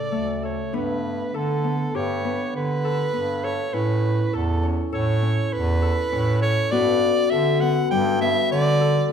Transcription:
Already playing: C#3 A3 A4 D5
0.11 D2 A3
0.43 A4 C#5
0.72 G2 B3 D4 B4
1.33 D3 A4
1.64 B3
1.94 G2 G4 C#5
2.25 B3
2.54 D3 B4
2.84 A4
3.14 G2 B3
3.44 A4 C#5
3.73 A2 C#4 E4 B4
4.33 E2 A4
4.63 C#4
4.93 A2 A4 C#5
5.22 C#4
5.52 E2 B4
5.82 A4
6.12 A2 C#4
6.42 A4 C#5
6.71 G2 B3 F#4 D5
7.30 D3 A4 E5
7.60 B3 F#5
7.91 G2 G3 G5
8.21 B3 E5
8.51 D3 D5
8.81 A4

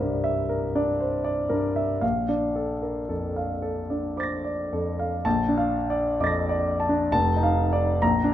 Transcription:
Already playing: C2 D4 C5 D5 E5
0.00 G2 A#4
0.24 E5
0.49 A#4
0.75 D4 D5
1.00 C5
1.24 D5
1.49 G2 A#4
1.76 E5
2.01 A#1 F5
2.29 D4 D5
2.56 A4
2.82 A#4
3.09 F2 A4
3.36 F5
3.62 A4
3.90 D4 D5
4.17 C5 D6 A6
4.23 A#6
4.44 D5
4.73 F2 A4
4.99 F5
5.25 A#1 A5
5.49 D4
5.57 F5
5.90 D5
6.20 F2 D#5 D6 A6
6.26 A#6
6.49 D5
6.80 A5
6.89 D4
7.12 F1 A5
7.36 D#4
7.43 F5
7.73 D5
8.02 A#1 A#5
8.24 D4

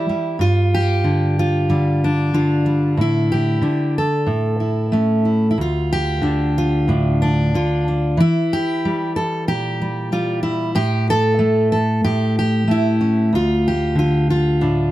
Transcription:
Already playing: E3 E4 G4
0.09 G3
0.39 G2 F4
0.74 G4
1.04 D3
1.39 F4
1.70 D3 G3
2.04 D4
2.34 D3 F4
2.66 G3
2.97 A2 E4
3.32 G4
3.62 D3 D4
3.98 A4
4.26 A2
4.60 E4
4.92 A3 C#4
5.25 E4
5.51 E4
5.58 D2 F4
5.93 G4
6.21 D3 D4
6.58 F4
6.88 A2 D4
7.22 D4
7.54 D3 F4
7.88 D4
8.17 E3 E4
8.53 G4
8.85 G3
9.16 A4
9.48 A#2 G4
9.82 G3
10.12 G3 F4
10.43 E4
10.75 A2 G4
11.10 A4
11.39 A3
11.72 A4
12.04 A2 G4
12.39 G4
12.68 A3 E4
13.01 C#4
13.33 D2 F4
13.68 G4
13.95 D3 F4
14.30 F4
14.61 A2 D4

